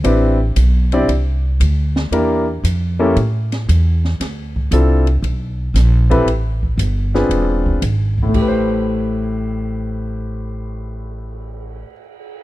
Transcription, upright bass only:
X:1
M:4/4
L:1/8
Q:"Swing" 1/4=116
K:Am
V:1 name="Upright bass" clef=bass
A,,,2 B,,,2 C,,2 D,,2 | E,,2 F,,2 A,,2 E,,2 | D,,2 C,,2 B,,,2 _B,,,2 | A,,,2 G,,,2 E,,,2 ^G,,,2 |
A,,,8- | A,,,8 |]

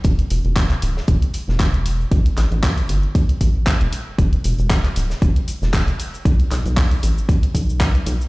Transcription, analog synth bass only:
X:1
M:4/4
L:1/16
Q:"Swing 16ths" 1/4=116
K:Ador
V:1 name="Analog synth bass" clef=bass
E,,, z E,,, E,,,2 z D,,, z E,,, z2 E,,,4 z | A,,, z A,,, A,,,2 z G,,, z3 A,,,3 E,,, z2 | E,,, z E,,, E,,,2 z D,,, z E,,, z2 E,,,2 z3 | B,,, z B,,, B,,,2 z A,,, z3 B,,,3 z B,,, z |]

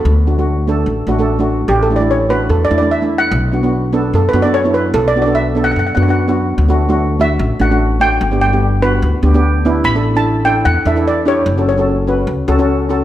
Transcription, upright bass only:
X:1
M:4/4
L:1/16
Q:"Swing 16ths" 1/4=147
K:D
V:1 name="Upright bass" clef=bass
D,,8 A,,,2 A,,,6 | A,,,8 E,,2 E,,6 | B,,,8 F,,2 F,,6 | B,,,8 F,,2 F,,6 |
D,,8 A,,, z A,,,6 | G,,,8 D,, z D,,6 | A,,,8 E,, z E,,6 | F,,,8 C,, z C,,6 |]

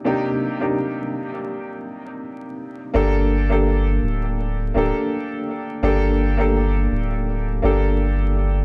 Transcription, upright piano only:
X:1
M:4/4
L:1/16
Q:"Swing 16ths" 1/4=83
K:Gm
V:1 name="Upright piano"
[C,B,DEG]3 [C,B,DEG]12- [C,B,DEG] | [B,DGA]3 [B,DGA]6- [B,DGA] [B,DGA]6 | [B,DGA]3 [B,DGA]6- [B,DGA] [B,DGA]6 |]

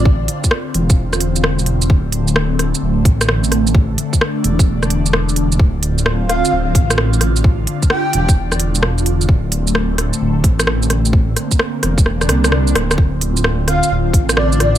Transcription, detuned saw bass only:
X:1
M:4/4
L:1/8
Q:"Swing 16ths" 1/4=130
K:Dm
V:1 name="Detuned saw bass" clef=bass
A,,, z2 E,,,2 E,,,3 | D,,,3 z D,,, A,,,3- | A,,, z2 E,,,2 E,,,3 | D,,,3 z D,,, A,,,3- |
A,,, z2 E,,,2 E,,,3 | D,,,3 z D,,, A,,,3- | A,,, z2 E,,,2 C,,2 D,,, | D,,,3 z D,,, A,,,3 |]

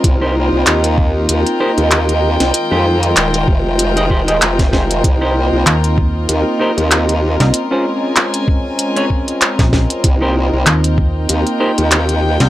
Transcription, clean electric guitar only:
X:1
M:4/4
L:1/16
Q:"Swing 16ths" 1/4=96
K:Cphr
V:1 name="Clean electric guitar"
z [EGBc] z8 [EGBc] z4 z | z [EGAc] z6 z [EGAe] [EGAc] [EGAe] z2 [EGAc] z | z [EGBc] z8 [EGBc] z4 z | z [DFAc] z6 z [DFAd] z6 |
z [EGBc] z8 [EGBc] z4 z |]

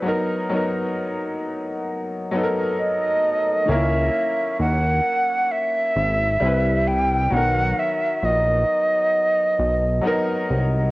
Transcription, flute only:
X:1
M:4/4
L:1/8
Q:"Swing 16ths" 1/4=66
K:B
V:1 name="Flute"
z6 d2 | e2 f2 e3 =g | f e d4- d z |]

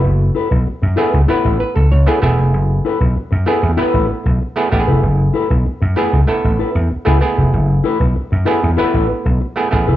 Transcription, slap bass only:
X:1
M:4/4
L:1/16
Q:1/4=96
K:F#m
V:1 name="Slap bass" clef=bass
F,,,2 z B,,, z F,, z C,, z A,,, z C,, C,, z E,,, ^E,,, | F,,,2 z B,,, z F,, z E,, z A,,, z B,,, z2 A,,, ^E,,, | F,,,2 z B,,, z F,, z C,, z A,,, z E,, z C,, z ^E,,, | F,,,2 z B,,, z F,, z E,, z A,,, z B,,, z2 A,,, ^E,,, |]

